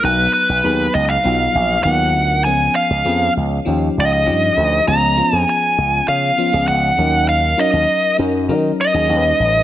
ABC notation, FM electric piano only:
X:1
M:4/4
L:1/16
Q:1/4=99
K:C#mix
V:1 name="FM electric piano"
[F,B,Da]2 z2 [F,B,DG]2 z2 [F,B,DE]2 z2 [F,B,DA]2 z2 | [E,B,CG]2 z2 [E,B,CG]2 z2 [E,CD=G]2 z2 [E,CDGe]2 a2 | [E,B,CG] z [E,B,CE]4- [E,B,CE] z3 [E,B,CE] [E,B,CG]3 [F,CDA]2- | [F,CDA] z [F,CDA]2 z2 [F,CDA] z [F,CDA]2 z [F,CDG] [=G,CDAB]3 z |]